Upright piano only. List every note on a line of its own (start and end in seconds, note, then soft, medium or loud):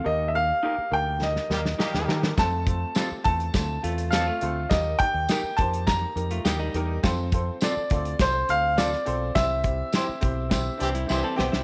0.04 0.27 A#3 loud
0.04 0.27 D#4 medium
0.04 0.27 G4 medium
0.04 0.28 A#4 loud
0.34 0.56 A#3 medium
0.34 0.57 D#4 medium
0.34 0.57 G4 medium
0.34 0.57 A#4 medium
0.63 0.86 A#3 medium
0.63 0.86 D#4 medium
0.63 0.86 G4 medium
0.63 0.86 A#4 medium
0.91 1.14 A#3 medium
0.91 1.14 D#4 medium
0.91 1.15 G4 medium
0.91 1.15 A#4 medium
1.19 1.43 A#3 medium
1.19 1.43 D#4 medium
1.19 1.43 G4 medium
1.19 1.44 A#4 medium
1.49 1.72 A#3 medium
1.49 1.73 D#4 medium
1.49 1.73 G4 medium
1.49 1.73 A#4 medium
1.78 2.01 A#3 medium
1.78 2.01 D#4 medium
1.78 2.02 G4 medium
1.78 2.02 A#4 medium
2.07 2.31 A#3 loud
2.07 2.31 D#4 loud
2.07 2.31 G4 loud
2.07 2.31 A#4 loud
2.36 2.60 A3 loud
2.36 2.60 C4 medium
2.36 2.60 F4 medium
2.36 2.61 A4 loud
2.65 2.89 A3 medium
2.65 2.89 C4 medium
2.65 2.89 F4 medium
2.65 2.90 A4 medium
2.95 3.18 A3 medium
2.95 3.18 C4 medium
2.95 3.18 F4 medium
2.95 3.19 G4 medium
3.23 3.47 A3 medium
3.23 3.47 C4 medium
3.23 3.47 F4 medium
3.23 3.47 A4 medium
3.52 3.76 A3 medium
3.52 3.76 C4 medium
3.52 3.76 F4 medium
3.52 3.77 A4 medium
3.82 4.05 A3 medium
3.82 4.05 C4 medium
3.82 4.06 F4 medium
3.82 4.06 A4 medium
4.11 4.34 A3 medium
4.11 4.34 C4 medium
4.11 4.35 F4 medium
4.11 4.35 A4 medium
4.41 4.64 A3 loud
4.41 4.64 C4 medium
4.41 4.64 F4 medium
4.41 4.64 A4 loud
4.70 4.93 A#3 loud
4.70 4.93 D#4 medium
4.70 4.93 G4 medium
4.70 4.94 A#4 loud
5.00 5.23 A#3 medium
5.00 5.23 D#4 medium
5.00 5.23 G4 medium
5.00 5.23 A#4 medium
5.29 5.52 A#3 medium
5.29 5.52 D#4 medium
5.29 5.52 G4 medium
5.29 5.53 A#4 medium
5.58 5.80 A#3 medium
5.58 5.81 D#4 medium
5.58 5.81 G4 medium
5.58 5.81 C5 loud
5.87 6.09 A#3 medium
5.87 6.10 D#4 medium
5.87 6.10 G4 medium
5.87 6.10 A#4 medium
6.15 6.38 A#3 medium
6.15 6.38 D#4 medium
6.15 6.38 G4 medium
6.15 6.39 A#4 medium
6.44 6.67 A#3 medium
6.44 6.68 D#4 medium
6.44 6.68 G4 medium
6.44 6.68 A#4 medium
6.74 6.97 A#3 loud
6.74 6.97 D#4 loud
6.74 6.97 G4 loud
6.74 6.98 A#4 loud
7.03 7.26 C4 loud
7.03 7.26 F4 loud
7.03 7.26 A4 loud
7.03 7.26 C5 loud
7.33 7.55 C4 medium
7.33 7.55 F4 medium
7.33 7.55 A4 medium
7.33 7.56 C5 medium
7.62 7.84 C4 medium
7.62 7.84 F4 medium
7.62 7.85 A4 medium
7.62 7.85 C5 medium
7.91 8.13 C4 medium
7.91 8.13 F4 medium
7.91 8.13 A4 medium
7.91 8.14 D5 loud
8.20 8.42 C4 medium
8.20 8.43 F4 medium
8.20 8.43 A4 medium
8.20 8.43 C5 medium
8.48 8.71 C4 medium
8.48 8.71 F4 medium
8.48 8.71 A4 medium
8.48 8.71 C5 medium
8.76 8.99 C4 medium
8.76 9.00 F4 medium
8.76 9.00 A4 medium
8.76 9.00 C5 medium
9.05 9.28 C4 loud
9.05 9.29 F4 medium
9.05 9.29 A4 medium
9.05 9.29 C5 loud
9.36 9.58 C4 medium
9.36 9.58 E4 medium
9.36 9.59 G4 medium
9.36 9.59 C5 loud
9.63 9.86 C4 medium
9.63 9.87 E4 medium
9.63 9.87 G4 medium
9.63 9.87 C5 medium
9.92 10.15 C4 medium
9.92 10.16 E4 medium
9.92 10.16 G4 medium
9.92 10.16 C5 medium
10.21 10.44 C4 loud
10.21 10.45 E4 medium
10.21 10.45 G4 medium
10.21 10.45 C5 loud
10.50 10.73 C4 medium
10.50 10.73 E4 medium
10.50 10.74 G4 medium
10.50 10.74 C5 loud
10.78 11.02 C4 medium
10.78 11.02 E4 medium
10.78 11.02 G4 medium
10.78 11.02 C5 medium
11.06 11.31 C4 medium
11.06 11.31 E4 medium
11.06 11.31 G4 medium
11.06 11.32 C5 medium
11.36 11.60 C4 loud
11.36 11.60 E4 loud
11.36 11.60 G4 loud
11.36 11.61 C5 loud